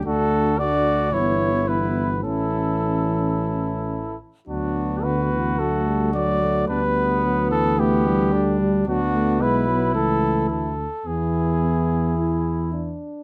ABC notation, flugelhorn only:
X:1
M:4/4
L:1/8
Q:1/4=108
K:D
V:1 name="Flugelhorn"
F2 F2 E2 E2 | E6- E z | D2 F6 | D B,3 B,2 D2 |
[K:Emix] D2 E4- E z | E6- E z |]